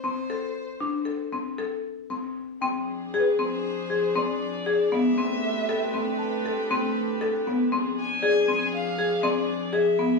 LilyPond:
<<
  \new Staff \with { instrumentName = "Celesta" } { \time 5/4 \key f \lydian \tempo 4 = 118 r1 r4 | g''2 r2. | r2 a''2 r4 | r4 d''2 r2 | }
  \new Staff \with { instrumentName = "Violin" } { \time 5/4 \key f \lydian c''2~ c''8 r2 r8 | r4 b'8 c''4. d''4. e''8~ | e''2~ e''8 r2 r8 | r8 aes''4. f''4 d''4 e''4 | }
  \new Staff \with { instrumentName = "String section" } { \time 5/4 \key f \lydian r1 r4 | <f d' aes'>1~ <f d' aes'>4 | <a c' g' b'>1~ <a c' g' b'>4 | <f aes'>1~ <f aes'>4 | }
  \new Staff \with { instrumentName = "Marimba" } { \time 5/4 \key f \lydian c'8 a'4 d'8 a'8 c'8 a'4 c'4 | c'4 aes'8 c'4 aes'8 c'4 aes'8 b8 | c'4 a'8 c'4 a'8 c'4 a'8 b8 | c'4 aes'8 c'4 aes'8 c'4 aes'8 b8 | }
>>